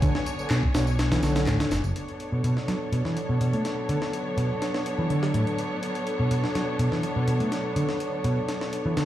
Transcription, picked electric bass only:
0.02 0.11 D3 medium
0.51 0.63 B2 loud
1.12 1.20 E3 loud
1.23 1.46 D3 medium
1.47 1.56 A2 medium
2.32 2.43 B2 medium
2.44 2.56 B2 medium
2.68 2.73 F#3 medium
2.92 3.01 B2 loud
3.05 3.16 E3 medium
3.29 3.40 B2 medium
3.41 3.53 B2 medium
3.53 3.62 A3 medium
3.89 3.98 D3 medium
4.37 4.49 B2 loud
4.99 5.07 E3 loud
5.10 5.33 D3 medium
5.34 5.43 A2 medium
6.20 6.30 B2 medium
6.31 6.43 B2 loud
6.55 6.61 F#3 medium
6.79 6.88 B2 loud
6.92 7.03 E3 medium
7.16 7.27 B2 medium
7.27 7.40 B2 loud
7.40 7.49 A3 medium
7.76 7.85 D3 medium
8.24 8.37 B2 loud
8.86 8.94 E3 medium
8.97 9.05 D3 medium

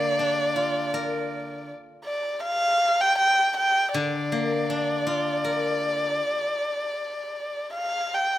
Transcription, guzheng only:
0.00 1.70 D3 soft
0.00 1.33 A#3 soft
0.19 1.71 D4 soft
0.56 2.08 F4 soft
0.94 2.45 A#4 soft
3.94 6.19 D3 medium
4.32 5.81 A#3 soft
4.70 6.20 D4 soft
5.07 6.58 F4 soft
5.45 6.96 A#4 soft

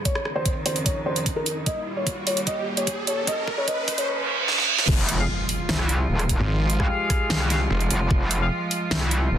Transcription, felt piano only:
0.05 0.22 C#5 loud
0.36 0.52 C5 medium
0.66 0.77 C5 medium
0.86 0.97 C#5 medium
1.06 1.23 C5 medium
1.36 1.53 A#4 medium
1.66 1.83 D#5 medium
1.97 2.13 C#5 medium
2.27 2.38 C#5 medium
2.47 2.64 D#5 loud
2.77 2.94 C#5 medium
3.07 3.18 C#5 medium
3.27 3.44 D#5 loud
3.58 3.66 C#5 medium
3.68 3.84 D#5 loud
3.98 4.06 C#5 medium

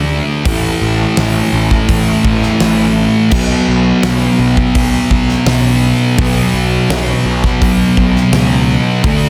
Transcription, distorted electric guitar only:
0.00 0.43 D3 loud
0.00 0.44 A3 loud
0.00 0.44 D4 loud
0.45 3.30 A2 loud
0.45 3.30 E3 loud
0.45 3.31 A3 loud
3.31 6.16 B2 medium
3.31 6.19 F#3 loud
3.31 6.17 B3 loud
6.18 9.01 B2 loud
6.18 9.02 F#3 loud
6.18 9.03 B3 loud
9.04 9.29 D3 loud
9.04 9.29 A3 loud
9.04 9.29 D4 loud

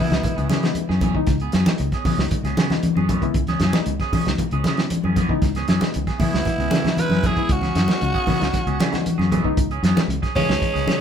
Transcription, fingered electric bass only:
0.11 0.21 C#2 medium
0.38 0.48 C#2 medium
0.50 0.71 C#3 loud
0.90 1.10 F#2 medium
1.27 1.48 C#2 loud
1.54 1.64 F#2 medium
1.80 1.90 C#2 loud
2.06 muted fingered electric bass stroke soft
2.18 2.28 C#2 medium
2.31 muted fingered electric bass stroke soft
2.44 2.54 C#2 medium
2.58 2.78 C#3 medium
2.96 3.17 F#2 medium
3.35 3.55 C#2 medium
3.60 3.70 F#2 loud
3.86 3.97 C#2 medium
4.12 muted fingered electric bass stroke soft
4.27 4.36 C#2 medium
4.52 4.62 C#2 medium
4.66 4.86 C#3 medium
5.04 5.24 F#2 medium
5.42 5.63 C#2 medium
5.69 5.79 F#2 medium
5.96 6.06 C#2 medium
6.20 muted fingered electric bass stroke soft
6.34 6.44 C#2 medium
6.58 6.69 C#2 medium
6.71 6.92 C#3 medium
7.10 7.31 F#2 medium
7.49 7.70 C#2 medium
7.75 7.86 F#2 loud
8.02 8.12 C#2 medium
8.28 muted fingered electric bass stroke soft
8.42 8.52 C#2 medium
8.54 muted fingered electric bass stroke soft
8.67 8.77 C#2 medium
8.80 9.00 C#3 medium
9.19 9.39 F#2 medium
9.57 9.78 C#2 medium
9.83 9.93 F#2 loud
10.08 10.19 C#2 medium
10.36 muted fingered electric bass stroke soft
10.49 10.59 C#2 medium
10.75 10.85 C#2 medium
10.87 11.01 C#3 medium

